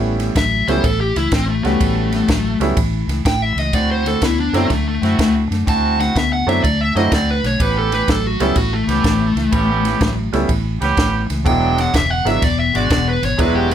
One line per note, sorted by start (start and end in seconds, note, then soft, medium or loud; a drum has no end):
0.00 0.28 A1 medium
0.00 0.16 A2 medium
0.00 0.17 E3 medium
0.00 0.32 G3 medium
0.00 0.32 A3 medium
0.00 0.32 B3 medium
0.00 0.33 C#4 medium
0.00 0.33 E4 medium
0.19 0.34 A2 medium
0.19 0.34 E3 medium
0.19 snare soft
0.19 ride medium
0.35 0.63 A1 medium
0.35 0.64 A2 medium
0.35 0.65 F#3 medium
0.35 0.68 E5 loud
0.35 kick medium
0.35 snare loud
0.35 ride medium
0.67 0.81 C#2 medium
0.67 0.82 A2 medium
0.67 0.82 F#3 medium
0.67 0.82 G3 medium
0.67 0.82 A3 medium
0.67 0.83 B3 medium
0.67 0.83 C#4 medium
0.67 0.83 E4 medium
0.67 0.84 C5 medium
0.67 snare soft
0.67 ride medium
0.83 1.11 A1 medium
0.83 1.13 A2 medium
0.83 1.13 E3 medium
0.83 1.00 A4 medium
0.83 kick medium
0.83 ride medium
1.01 1.16 G4 medium
1.16 1.30 C#2 medium
1.16 1.30 A2 medium
1.16 1.31 E3 medium
1.16 1.32 E4 medium
1.16 snare soft
1.16 ride medium
1.31 1.60 A1 medium
1.31 1.61 A2 medium
1.31 1.61 E3 loud
1.31 1.48 C4 medium
1.31 kick medium
1.31 snare loud
1.31 ride medium
1.49 1.63 A3 medium
1.64 1.78 C#2 medium
1.64 1.79 A2 medium
1.64 1.79 E3 medium
1.64 2.25 G3 medium
1.64 2.58 A3 medium
1.64 2.26 A3 medium
1.64 2.26 B3 medium
1.64 2.26 C#4 medium
1.64 2.26 F#4 medium
1.64 snare soft
1.64 ride medium
1.80 2.21 A1 medium
1.80 2.10 A2 medium
1.80 2.10 E3 medium
1.80 kick medium
1.80 ride medium
2.12 2.27 A2 medium
2.12 2.27 E3 medium
2.12 snare soft
2.12 ride medium
2.28 2.56 A1 medium
2.28 2.58 A2 medium
2.28 2.58 F#3 loud
2.28 kick medium
2.28 snare loud
2.28 ride medium
2.60 2.74 C#2 medium
2.60 2.75 A2 medium
2.60 2.76 F#3 medium
2.60 2.75 G3 medium
2.60 2.75 A3 medium
2.60 2.76 B3 medium
2.60 2.76 C#4 medium
2.60 2.76 E4 medium
2.60 snare soft
2.60 ride medium
2.76 3.04 A1 medium
2.76 3.06 A2 medium
2.76 3.06 E3 medium
2.76 kick medium
2.76 ride medium
3.08 3.22 C#2 medium
3.08 3.24 A2 medium
3.08 3.24 E3 medium
3.08 snare soft
3.08 ride medium
3.25 3.52 A1 medium
3.25 3.55 E3 medium
3.25 3.42 G5 medium
3.25 kick medium
3.25 snare loud
3.25 ride medium
3.42 3.59 E5 medium
3.56 3.70 C#2 medium
3.56 3.72 A2 medium
3.56 3.72 E3 medium
3.56 3.74 D#5 medium
3.56 snare soft
3.56 ride medium
3.73 4.14 D2 medium
3.73 4.03 D3 medium
3.73 4.03 A3 medium
3.73 4.35 C4 medium
3.73 4.35 E4 medium
3.73 4.35 F#4 medium
3.73 3.90 D5 medium
3.73 kick medium
3.73 ride medium
3.91 4.06 C5 medium
4.06 4.20 D3 medium
4.06 4.21 A3 medium
4.06 4.22 A4 medium
4.06 snare soft
4.06 ride medium
4.21 4.49 D2 medium
4.21 4.51 D3 medium
4.21 4.52 B3 medium
4.21 4.39 E4 medium
4.21 kick medium
4.21 snare loud
4.21 ride medium
4.40 4.55 D4 medium
4.53 4.67 F#2 medium
4.53 4.69 D3 medium
4.53 4.68 F#3 medium
4.53 4.68 A3 medium
4.53 4.69 B3 medium
4.53 4.68 C4 medium
4.53 4.70 C4 medium
4.53 4.69 D4 medium
4.53 4.69 E4 medium
4.53 snare soft
4.53 ride medium
4.70 4.97 D2 medium
4.70 4.99 D3 medium
4.70 5.00 A3 medium
4.70 4.87 A3 medium
4.70 kick medium
4.70 snare soft
4.70 ride medium
4.88 5.34 A3 medium
5.02 5.16 F#2 medium
5.02 5.17 D3 medium
5.02 5.17 A3 medium
5.02 5.44 C4 medium
5.02 5.44 E4 medium
5.02 5.44 F#4 medium
5.02 snare soft
5.02 ride medium
5.19 5.46 D2 medium
5.19 5.48 D3 medium
5.19 5.48 A3 medium
5.19 kick medium
5.19 snare loud
5.19 ride medium
5.51 5.64 F#2 medium
5.51 5.65 D3 medium
5.51 5.65 A3 medium
5.51 snare soft
5.51 ride medium
5.66 6.08 D2 medium
5.66 5.96 D3 medium
5.66 5.96 A3 medium
5.66 6.28 C4 medium
5.66 6.28 E4 medium
5.66 6.28 F#4 medium
5.66 5.99 A5 medium
5.66 kick medium
5.66 ride medium
5.99 6.13 D3 medium
5.99 6.13 A3 medium
5.99 6.18 F#5 medium
5.99 snare soft
5.99 ride medium
6.15 6.43 D2 medium
6.15 6.44 D3 loud
6.15 6.44 B3 loud
6.15 6.32 E5 medium
6.15 kick medium
6.15 snare loud
6.15 ride medium
6.33 6.48 F#5 medium
6.47 6.60 F#2 medium
6.47 6.62 D3 medium
6.47 6.61 F#3 medium
6.47 6.61 A3 medium
6.47 6.62 B3 medium
6.47 6.62 C4 medium
6.47 6.62 D4 medium
6.47 6.62 E4 medium
6.47 6.63 E5 medium
6.47 snare soft
6.47 ride medium
6.63 6.91 D2 medium
6.63 6.93 D3 medium
6.63 6.93 A3 medium
6.63 6.81 D5 medium
6.63 kick medium
6.63 ride medium
6.81 6.96 E5 medium
6.95 7.09 F#2 medium
6.95 7.10 D3 medium
6.95 7.10 F#3 medium
6.95 7.10 A3 medium
6.95 7.37 C4 medium
6.95 7.10 C4 medium
6.95 7.10 D4 medium
6.95 7.38 E4 medium
6.95 7.10 E4 medium
6.95 7.38 F#4 medium
6.95 7.12 D#5 medium
6.95 snare soft
6.95 ride medium
7.12 7.39 D2 medium
7.12 7.41 D3 medium
7.12 7.41 A3 medium
7.12 7.29 D5 medium
7.12 kick medium
7.12 snare loud
7.12 ride medium
7.31 7.45 B4 medium
7.44 7.57 B1 medium
7.44 7.58 D3 medium
7.44 7.58 A3 medium
7.44 7.61 C#5 medium
7.44 snare soft
7.44 ride medium
7.60 8.01 A1 medium
7.60 7.89 A2 medium
7.60 7.89 E3 loud
7.60 8.21 B3 medium
7.60 8.21 C#4 medium
7.60 8.21 G4 medium
7.60 7.76 B4 medium
7.60 kick medium
7.60 ride medium
7.79 7.94 A4 medium
7.92 8.07 A2 medium
7.92 8.07 E3 medium
7.92 8.08 B4 medium
7.92 snare soft
7.92 ride medium
8.08 8.35 A1 medium
8.08 8.37 A2 medium
8.08 8.37 F#3 loud
8.08 8.27 A4 medium
8.08 kick medium
8.08 snare loud
8.08 ride medium
8.27 8.41 F#4 medium
8.40 8.54 C#2 medium
8.40 8.54 A2 medium
8.40 8.55 F#3 medium
8.40 8.55 G3 medium
8.40 8.55 A3 medium
8.40 8.55 B3 medium
8.40 8.55 C#4 medium
8.40 8.55 E4 medium
8.40 8.57 A4 medium
8.40 snare soft
8.40 ride medium
8.55 8.83 A1 medium
8.55 8.85 A2 medium
8.55 8.85 E3 medium
8.55 8.72 F#4 medium
8.55 kick medium
8.55 ride medium
8.73 10.14 A3 medium
8.87 9.01 C#2 medium
8.87 9.03 A2 medium
8.87 9.03 E3 medium
8.87 9.30 B3 medium
8.87 9.30 C#4 medium
8.87 9.30 G4 medium
8.87 snare soft
8.87 ride medium
9.04 9.32 A1 medium
9.04 9.33 A2 medium
9.04 9.34 E3 loud
9.04 kick medium
9.04 snare loud
9.04 ride medium
9.35 9.49 C#2 medium
9.35 9.51 A2 medium
9.35 9.51 E3 medium
9.35 snare soft
9.35 ride medium
9.52 9.93 A1 medium
9.52 9.82 A2 medium
9.52 9.82 E3 loud
9.52 10.14 B3 medium
9.52 10.14 C#4 medium
9.52 10.14 G4 loud
9.52 kick medium
9.52 ride medium
9.84 9.99 A2 medium
9.84 9.99 E3 medium
9.84 snare soft
9.84 ride medium
10.01 10.28 A1 medium
10.01 10.30 A2 loud
10.01 10.30 F#3 medium
10.01 kick medium
10.01 snare loud
10.01 ride medium
10.33 10.47 C#2 medium
10.33 10.47 A2 medium
10.33 10.48 F#3 medium
10.33 10.47 G3 medium
10.33 10.48 A3 medium
10.33 10.48 B3 medium
10.33 10.48 C#4 medium
10.33 10.48 E4 medium
10.33 snare soft
10.33 ride medium
10.48 10.76 A1 medium
10.48 10.78 A2 medium
10.48 10.78 E3 medium
10.48 kick medium
10.48 ride medium
10.81 10.95 C#2 medium
10.81 10.96 A2 medium
10.81 10.96 E3 medium
10.81 11.23 B3 medium
10.81 11.23 C#4 medium
10.81 11.23 G4 loud
10.81 snare soft
10.81 ride medium
10.97 11.25 A1 medium
10.97 11.26 A2 medium
10.97 11.27 E3 medium
10.97 kick medium
10.97 snare loud
10.97 ride medium
11.30 11.43 C#2 medium
11.30 11.44 A2 medium
11.30 11.44 E3 medium
11.30 snare soft
11.30 ride medium
11.45 11.86 E1 medium
11.45 11.75 E2 medium
11.45 11.75 B2 loud
11.45 11.74 F#3 medium
11.45 12.07 F#3 medium
11.45 11.74 G#3 medium
11.45 12.07 G#3 medium
11.45 11.75 B3 medium
11.45 12.07 D4 medium
11.45 11.75 D4 medium
11.45 11.75 E4 medium
11.45 11.77 G5 medium
11.45 kick medium
11.45 ride medium
11.78 11.92 E2 medium
11.78 11.92 B2 medium
11.78 11.95 F#5 medium
11.78 snare soft
11.78 ride medium
11.93 12.21 E1 medium
11.93 12.23 E2 medium
11.93 12.23 C#3 loud
11.93 12.10 E5 medium
11.93 kick medium
11.93 snare loud
11.93 ride medium
12.10 12.28 F#5 loud
12.25 12.39 G#1 medium
12.25 12.41 E2 medium
12.25 12.41 C#3 medium
12.25 12.40 F#3 medium
12.25 12.40 G#3 medium
12.25 12.40 B3 medium
12.25 12.40 D4 medium
12.25 12.41 E4 medium
12.25 12.44 E5 medium
12.25 snare soft
12.25 ride medium
12.42 12.69 E1 medium
12.42 12.71 E2 medium
12.42 12.71 B2 loud
12.42 12.59 D5 medium
12.42 kick medium
12.42 snare soft
12.42 ride medium
12.60 12.75 E5 medium
12.74 12.88 G#1 medium
12.74 12.89 E2 medium
12.74 12.89 B2 medium
12.74 13.16 G#3 medium
12.74 13.16 D4 medium
12.74 13.16 F#4 medium
12.74 12.91 D5 medium
12.74 snare soft
12.74 ride medium
12.90 13.18 E1 loud
12.90 13.20 B2 medium
12.90 13.07 D5 medium
12.90 kick medium
12.90 snare loud
12.90 ride medium
13.09 13.23 B4 medium
13.22 13.36 G#1 medium
13.22 13.37 E2 medium
13.22 13.37 B2 medium
13.22 13.40 C#5 medium
13.22 snare soft
13.22 ride medium
13.38 13.74 E1 medium
13.38 13.68 E2 medium
13.38 13.68 B2 medium
13.38 13.67 F#3 medium
13.38 13.74 G#3 medium
13.38 13.68 G#3 medium
13.38 13.68 B3 medium
13.38 13.74 D4 medium
13.38 13.68 D4 medium
13.38 13.68 E4 medium
13.38 13.74 F#4 medium
13.38 13.55 B4 medium
13.38 kick medium
13.38 ride medium
13.56 13.71 G4 loud
13.70 13.74 E2 medium
13.70 13.74 B2 medium
13.70 13.74 B4 medium
13.70 ride medium